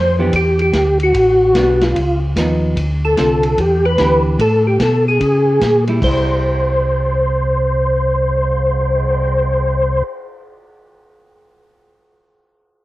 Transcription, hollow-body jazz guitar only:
0.19 0.32 E3 medium
0.19 0.32 B3 medium
0.19 0.32 D4 medium
0.19 0.32 G4 medium
1.56 1.96 G3 medium
1.56 1.96 B3 medium
1.56 1.97 D4 medium
2.37 2.77 F3 medium
2.37 2.78 B3 medium
2.37 2.78 D#4 medium
3.18 3.58 D3 soft
3.18 3.59 C4 medium
3.18 3.59 F4 soft
3.18 3.59 A4 soft
3.99 4.40 E3 medium
3.99 4.40 B3 medium
3.99 4.40 D4 medium
3.99 4.40 G4 medium
5.88 6.02 G3 medium
5.88 6.05 E4 medium
6.03 10.77 G3 medium
6.03 10.79 E4 medium

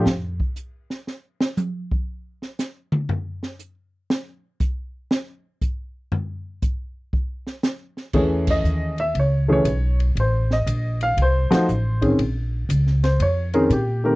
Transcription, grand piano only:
8.14 8.92 E3 medium
8.14 8.92 A3 medium
8.14 8.92 C#4 medium
8.14 8.92 G#4 medium
8.14 8.48 C#5 medium
8.50 8.96 D#5 medium
9.00 9.16 E5 medium
9.19 9.50 C#5 medium
9.48 9.64 E3 medium
9.48 9.64 A3 medium
9.48 9.64 C#4 medium
9.48 9.64 G#4 medium
9.52 9.98 C#5 medium
10.20 10.51 C5 medium
10.53 10.99 D#5 medium
11.03 11.18 F5 medium
11.22 11.53 C5 medium
11.51 11.66 F3 medium
11.51 11.66 A3 medium
11.51 11.66 D#4 medium
11.51 11.66 F#4 medium
11.51 12.00 C5 medium
12.01 12.17 D#3 medium
12.01 12.17 C4 medium
12.01 12.17 C#4 medium
12.01 12.17 G#4 medium
13.04 13.20 C5 medium
13.22 13.54 C#5 medium
13.54 13.69 D#3 medium
13.54 13.69 C4 medium
13.54 13.69 C#4 medium
13.54 13.69 G#4 medium
13.54 13.70 A#4 medium
13.73 14.03 G4 medium
14.04 14.15 D#3 medium
14.04 14.15 A3 medium
14.04 14.15 C4 medium
14.04 14.15 G4 medium
14.04 14.15 A#4 medium

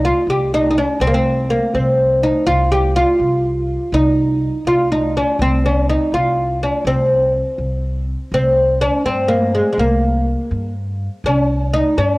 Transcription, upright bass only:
0.27 0.83 C2 medium
1.00 1.56 C2 loud
1.74 2.29 C2 medium
2.46 3.02 C2 medium
3.19 3.75 C2 medium
3.92 4.48 C2 loud
4.65 5.21 C2 medium
5.39 5.95 C2 loud
6.12 6.68 C2 medium
6.85 7.41 C2 medium
7.58 8.14 C2 medium
8.32 8.87 C2 medium
9.05 9.60 G2 medium
9.78 10.33 C2 medium
10.51 11.07 G2 medium
11.24 11.80 C2 medium
11.97 12.18 G2 medium

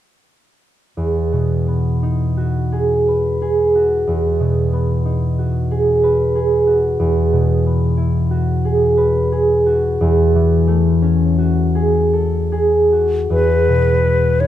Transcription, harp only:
0.97 4.06 E2 soft
1.33 4.39 B2 soft
1.67 4.72 B3 soft
2.03 5.04 D#4 soft
2.37 3.74 F#4 soft
2.72 3.40 G#4 soft
3.08 6.02 B4 soft
3.42 5.70 G#4 soft
3.75 5.37 F#4 soft
4.07 6.98 E2 soft
4.40 7.03 B2 soft
4.73 7.65 B3 soft
5.05 7.03 D#4 soft
5.38 6.66 F#4 soft
5.71 6.34 G#4 soft
6.03 8.96 B4 soft
6.35 8.64 G#4 soft
6.67 8.29 F#4 soft
6.99 9.99 E2 soft
7.33 10.06 B2 soft
7.66 10.06 B3 soft
7.97 11.87 E4 soft
8.31 9.65 F#4 soft
8.65 9.31 G#4 soft
8.97 10.05 B4 soft
9.32 11.74 G#4 soft
9.66 11.37 F#4 soft
10.01 13.29 E2 soft
10.35 13.36 E3 soft
10.67 13.35 A3 soft
11.02 13.35 C#4 soft
11.38 12.91 F#4 soft
11.75 12.51 G#4 soft
12.13 13.35 A4 soft
12.52 14.47 G#4 soft
12.92 13.35 F#4 soft
13.30 14.47 E2 soft
13.68 14.47 B2 soft
14.05 14.47 B3 soft
14.41 14.47 D#4 soft

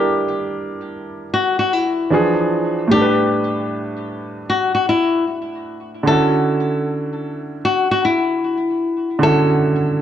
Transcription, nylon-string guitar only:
0.00 1.29 G4 medium
1.34 1.56 F#4 medium
1.59 1.73 F#4 medium
1.73 2.87 E4 medium
2.91 4.45 G4 loud
4.50 4.72 F#4 medium
4.75 4.87 F#4 medium
4.89 5.24 E4 medium
6.07 7.60 A4 medium
7.65 7.87 F#4 medium
7.91 8.03 F#4 medium
8.05 9.18 E4 medium
9.23 10.02 A4 medium

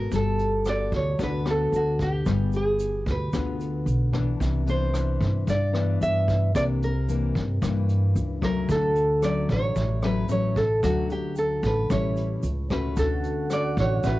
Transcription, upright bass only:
0.12 0.88 G1 medium
0.92 1.17 D2 medium
1.19 1.69 D2 medium
1.72 2.22 D2 medium
2.26 3.02 G1 medium
3.06 3.31 D2 medium
3.33 3.83 D2 medium
3.86 4.36 B1 medium
4.41 5.17 C2 medium
5.21 5.46 G2 medium
5.47 5.97 G2 medium
6.01 6.51 G2 medium
6.55 7.31 C2 medium
7.35 7.60 G2 medium
7.62 8.12 G2 medium
8.15 8.65 C#2 medium
8.69 9.45 D2 medium
9.49 9.74 A1 medium
9.76 10.26 A1 medium
10.29 10.79 A1 medium
10.83 11.59 D2 medium
11.63 11.88 A1 medium
11.90 12.40 A1 medium
12.43 12.93 C#2 medium
12.97 13.73 D2 medium
13.77 14.02 A1 medium
14.04 14.19 A1 medium

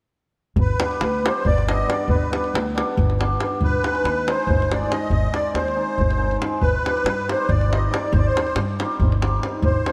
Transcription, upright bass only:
0.56 0.71 G1 loud
1.01 1.27 D2 medium
1.45 1.83 G1 medium
2.08 2.22 G1 medium
2.54 2.80 D2 medium
2.97 3.35 G1 loud
3.61 3.74 G1 medium
4.04 4.30 D#2 medium
4.47 4.85 G1 medium
5.11 5.25 G1 medium
5.54 5.81 D#2 medium
5.98 6.36 G1 medium
6.61 6.75 G1 medium
7.04 7.31 G2 medium
7.49 7.87 G1 loud
8.12 8.26 G1 loud
8.55 8.82 G2 medium
9.00 9.38 G1 loud
9.62 9.77 G1 loud

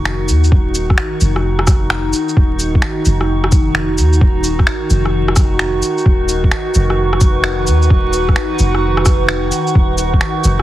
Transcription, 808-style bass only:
0.00 0.30 F1 medium
0.29 0.51 D#2 medium
0.52 0.97 D#1 loud
1.21 2.12 F1 medium
2.37 2.82 D#1 loud
3.06 3.99 F1 medium
3.98 4.20 D#2 medium
4.21 4.66 D#1 loud
4.90 5.81 F1 medium
6.06 6.51 D#1 loud
6.75 7.68 F1 medium
7.67 7.89 D#2 medium
7.91 8.36 D#1 loud
8.59 9.51 F1 medium
9.75 10.20 D#1 loud
10.44 10.62 F1 medium

